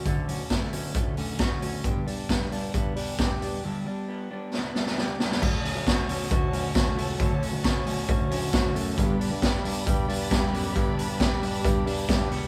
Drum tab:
CC |----------------|----------------|----------------|x---------------|
HH |x-o-x-o-x-o-x-o-|x-o-x-o-x-o-x-o-|----------------|--o-x-o-x-o-x-o-|
SD |----o-------o---|----o-------o---|--------o-ooo-oo|----o-------o---|
BD |o---o---o---o---|o---o---o---o---|----------------|o---o---o---o---|

CC |----------------|----------------|----------------|
HH |x-o-x-o-x-o-x-o-|x-o-x-o-x-o-x-o-|x-o-x-o-x-o-x-o-|
SD |----o-------o---|----o-------o---|----o-------o---|
BD |o---o---o---o---|o---o---o---o---|o---o---o---o---|